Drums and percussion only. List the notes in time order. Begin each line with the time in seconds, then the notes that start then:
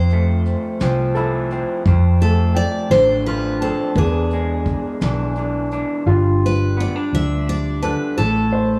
0.10 closed hi-hat
0.45 closed hi-hat
0.80 snare, closed hi-hat
1.15 closed hi-hat
1.51 closed hi-hat
1.86 kick, closed hi-hat
2.20 closed hi-hat
2.56 closed hi-hat
2.91 snare, closed hi-hat
3.26 closed hi-hat
3.61 closed hi-hat
3.95 kick, closed hi-hat
4.31 closed hi-hat
4.66 kick, closed hi-hat
5.01 snare, closed hi-hat
5.36 closed hi-hat
5.71 closed hi-hat